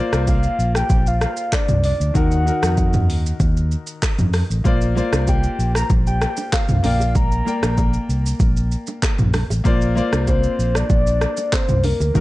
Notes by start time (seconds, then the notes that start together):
Already playing: A#3 F4 C5 D5
0.13 C2, cross-stick, shaker
0.27 F5, kick, shaker
0.43 shaker
0.59 A#1, shaker
0.75 G5, cross-stick, shaker
0.90 A#1, kick, shaker
1.07 F5, shaker
1.21 F5, cross-stick, shaker
1.37 shaker
1.52 D5, kick, cross-stick, clap, shaker
1.68 C2, mid tom, shaker
1.84 D5, open hi-hat, shaker
2.00 D2, shaker
2.14 D#2 D#3 D#4 F#4 A#4 F#5, kick, shaker
2.31 shaker
2.45 D#3 D#4 F#4 A#4, shaker
2.63 F2, cross-stick, shaker
2.77 kick, shaker
2.93 mid tom, shaker
3.09 D#2, open hi-hat, shaker
3.26 shaker
3.40 D#2, kick, shaker
3.57 shaker
3.71 shaker
3.87 shaker
4.02 kick, cross-stick, clap, shaker
4.18 F2, mid tom, shaker
4.33 cross-stick, open hi-hat, shaker
4.50 A1, shaker
4.64 A#1 A#3 F4 C5 D5, kick, low conga, shaker
4.81 shaker
4.95 A#3 F4 C5 D5, low conga, shaker
5.13 C2, cross-stick, high bongo, low bongo, shaker
5.27 G5, kick, high bongo, shaker
5.43 shaker
5.59 A#1, shaker
5.75 A#5, cross-stick, shaker
5.90 A#1, kick, low conga, shaker
6.07 G5, shaker
6.22 G5, cross-stick, shaker
6.37 low bongo, shaker
6.53 F5, kick, cross-stick, clap, high bongo, shaker
6.69 C2, mid tom, shaker
6.83 A#1 A#3 A#4 D5 F5 G5, open hi-hat, low bongo, shaker
7.00 high bongo, shaker
7.15 A#5, kick, low conga, shaker
7.32 shaker
7.45 A#3 A#4 D5 G5, low conga, shaker
7.63 A#1, cross-stick, high bongo, low bongo, shaker
7.77 kick, high bongo, shaker
7.93 shaker
8.09 C2, shaker
8.26 shaker
8.40 A#1, kick, low conga, shaker
8.57 shaker
8.72 shaker
8.87 low bongo, shaker
9.03 kick, cross-stick, clap, high bongo, shaker
9.19 A#1, mid tom, shaker
9.34 cross-stick, open hi-hat, low bongo, shaker
9.50 A1, high bongo, shaker
9.64 A#1 A#3 F4 C5 D5, kick, low conga, shaker
9.82 shaker
9.95 A#3 F4 C5 D5, low conga, shaker
10.13 C2, cross-stick, high bongo, low bongo, shaker
10.27 C5, kick, high bongo, shaker
10.43 shaker
10.59 A#1, shaker
10.75 D5, cross-stick, shaker
10.90 A#1, kick, low conga, shaker
11.07 shaker
11.21 cross-stick, shaker
11.37 low bongo, shaker
11.53 C5, kick, cross-stick, clap, high bongo, shaker
11.69 C2, mid tom, shaker
11.84 A#4, open hi-hat, low bongo, shaker
12.00 D2, high bongo, shaker
12.14 D#2 D#3 D#4 F#4 A#4, kick, low conga, shaker